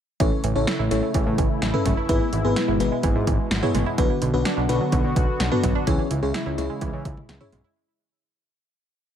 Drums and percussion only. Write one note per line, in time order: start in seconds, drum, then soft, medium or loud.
0.20 kick loud
0.20 closed hi-hat medium
0.44 closed hi-hat medium
0.67 snare loud
0.67 closed hi-hat medium
0.91 closed hi-hat medium
1.14 kick medium
1.14 closed hi-hat medium
1.38 kick loud
1.38 closed hi-hat medium
1.62 snare loud
1.62 closed hi-hat medium
1.74 mid tom medium
1.86 kick medium
1.86 closed hi-hat medium
1.86 mid tom medium
2.09 kick loud
2.09 closed hi-hat medium
2.33 closed hi-hat medium
2.56 snare loud
2.56 closed hi-hat medium
2.80 closed hi-hat medium
3.03 kick medium
3.03 closed hi-hat medium
3.27 kick medium
3.27 closed hi-hat medium
3.51 snare loud
3.51 closed hi-hat medium
3.63 mid tom medium
3.75 closed hi-hat medium
3.75 mid tom medium
3.98 kick loud
3.98 closed hi-hat medium
4.22 closed hi-hat medium
4.45 snare loud
4.45 closed hi-hat medium
4.69 closed hi-hat medium
4.92 kick medium
4.92 closed hi-hat medium
5.16 kick loud
5.16 closed hi-hat medium
5.40 snare loud
5.40 closed hi-hat medium
5.52 mid tom medium
5.63 kick medium
5.63 closed hi-hat medium
5.63 mid tom medium
5.87 kick loud
5.87 closed hi-hat medium
6.11 closed hi-hat medium
6.34 snare loud
6.34 closed hi-hat medium
6.58 closed hi-hat medium
6.81 kick medium
6.81 closed hi-hat medium
7.05 kick loud
7.05 closed hi-hat medium
7.17 mid tom medium
7.29 snare loud
7.29 closed hi-hat medium
7.41 mid tom medium
7.52 closed hi-hat medium
7.52 mid tom loud